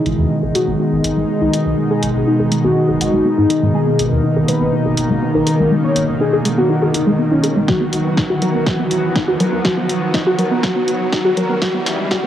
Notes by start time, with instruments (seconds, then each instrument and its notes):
Already playing: analog synth pad B2 D#3 G#3 D#4, riser
0.06 analog synth bass G#1, closed hi-hat
0.18 analog synth bass D#2
0.30 synth arpeggio sound D#4
0.43 analog synth bass G#1, synth arpeggio sound G#4
0.55 synth arpeggio sound G#3, analog synth lead F#4, closed hi-hat
0.68 analog synth bass G#1, synth arpeggio sound B3
0.80 synth arpeggio sound D#4
0.92 analog synth bass G#1, synth arpeggio sound G#4
1.04 analog synth bass G#1, closed hi-hat
1.17 analog synth bass G#1, synth arpeggio sound G#3
1.29 synth arpeggio sound B3
1.41 analog synth bass B1, synth arpeggio sound D#4, analog synth lead D#4
1.53 synth arpeggio sound G#4, closed hi-hat
1.66 analog synth bass B1, synth arpeggio sound G#3
1.78 synth arpeggio sound G#3
1.90 synth arpeggio sound B3, analog synth lead G#4
2.03 analog synth bass G#1, closed hi-hat
2.15 analog synth bass G#1
2.27 synth arpeggio sound D#4, analog synth lead D#4
2.40 analog synth bass D#1, synth arpeggio sound G#4
2.52 synth arpeggio sound G#3, closed hi-hat
2.64 analog synth bass D#1, synth arpeggio sound B3, analog synth lead F#4
2.76 synth arpeggio sound D#4
2.89 analog synth bass F#1, synth arpeggio sound G#4
3.01 analog synth bass F#1, analog synth lead F#4, closed hi-hat
3.13 analog synth bass F#1, synth arpeggio sound G#3
3.25 synth arpeggio sound B3
3.38 analog synth bass G#2, analog synth lead D#4, synth arpeggio sound D#4
3.50 synth arpeggio sound G#4, closed hi-hat
3.63 analog synth bass G#2, synth arpeggio sound G#3
3.75 synth arpeggio sound G#3, analog synth pad A#3, analog synth lead G#4
3.87 synth arpeggio sound B3
3.99 analog synth bass G#1, closed hi-hat
4.12 analog synth bass D#2
4.24 synth arpeggio sound D#4
4.36 analog synth bass G#1, synth arpeggio sound G#4
4.48 synth arpeggio sound G#3, analog synth lead B4, closed hi-hat
4.61 analog synth bass G#1, synth arpeggio sound B3
4.73 synth arpeggio sound D#4
4.86 analog synth bass G#1, synth arpeggio sound G#4
4.97 analog synth bass G#1, closed hi-hat
5.10 analog synth bass G#1, synth arpeggio sound G#3
5.22 synth arpeggio sound B3
5.35 analog synth bass B1, synth arpeggio sound D#4, analog synth lead A#4
5.47 synth arpeggio sound G#4, closed hi-hat
5.59 analog synth bass B1, synth arpeggio sound G#3
5.71 synth arpeggio sound G#3
5.84 synth arpeggio sound B3, analog synth lead C#5
5.96 analog synth bass G#1, closed hi-hat
6.09 analog synth bass G#1
6.21 synth arpeggio sound D#4, analog synth lead G#4
6.33 analog synth bass D#1, synth arpeggio sound G#4
6.45 synth arpeggio sound G#3, closed hi-hat
6.58 analog synth bass D#1, synth arpeggio sound B3, analog synth lead F#4
6.70 synth arpeggio sound D#4
6.82 analog synth bass F#1, synth arpeggio sound G#4
6.94 analog synth bass F#1, analog synth lead D#4, closed hi-hat
7.07 analog synth bass F#1, synth arpeggio sound G#3
7.19 synth arpeggio sound B3
7.32 analog synth bass B1, analog synth lead C#4, synth arpeggio sound D#4
7.44 synth arpeggio sound G#4, closed hi-hat
7.56 analog synth bass B1, synth arpeggio sound G#3
7.68 synth arpeggio sound F#3, analog synth pad F#3 B3 F#4, analog synth lead F#4, kick, snare
7.81 synth arpeggio sound B3
7.93 analog synth bass B1, closed hi-hat
8.05 analog synth bass F#1
8.17 synth arpeggio sound D#4, kick, snare
8.30 analog synth bass B1, synth arpeggio sound F#4
8.42 synth arpeggio sound F#3, analog synth lead A#4, closed hi-hat
8.54 analog synth bass B1, synth arpeggio sound B3
8.66 synth arpeggio sound F#3, analog synth lead F#4, kick, snare
8.79 analog synth bass B1, synth arpeggio sound B3
8.91 analog synth bass B1, closed hi-hat
9.04 analog synth bass B1
9.16 synth arpeggio sound D#4, kick, snare
9.28 analog synth bass D#2, synth arpeggio sound F#4
9.40 synth arpeggio sound F#3, analog synth lead A#4, closed hi-hat
9.53 analog synth bass D#2, synth arpeggio sound B3
9.65 synth arpeggio sound F#3, analog synth lead F#4, kick, snare
9.77 synth arpeggio sound B3
9.89 analog synth bass B1, closed hi-hat
10.02 analog synth bass B1
10.14 synth arpeggio sound D#4, kick, snare
10.27 analog synth bass F#1, synth arpeggio sound F#4
10.39 synth arpeggio sound F#3, analog synth lead A#4, closed hi-hat
10.51 analog synth bass F#1, synth arpeggio sound B3
10.63 synth arpeggio sound F#3, analog synth lead F#4, kick, snare
10.76 analog synth bass F#1, synth arpeggio sound B3
10.88 analog synth bass F#1, closed hi-hat
11.00 analog synth bass F#1
11.12 synth arpeggio sound D#4, kick, snare
11.25 analog synth bass F#1, synth arpeggio sound F#4
11.37 synth arpeggio sound F#3, analog synth lead A#4, closed hi-hat
11.50 analog synth bass F#1, synth arpeggio sound B3
11.62 analog synth pad C#3 E3 G#3 E4, synth arpeggio sound F#3, analog synth lead F#4, kick, snare
11.74 synth arpeggio sound B3
11.86 analog synth bass C#2, snare, closed hi-hat
11.99 analog synth bass G#1
12.11 synth arpeggio sound F#3, analog synth lead F#4, kick, snare
12.23 analog synth bass C#2, synth arpeggio sound B3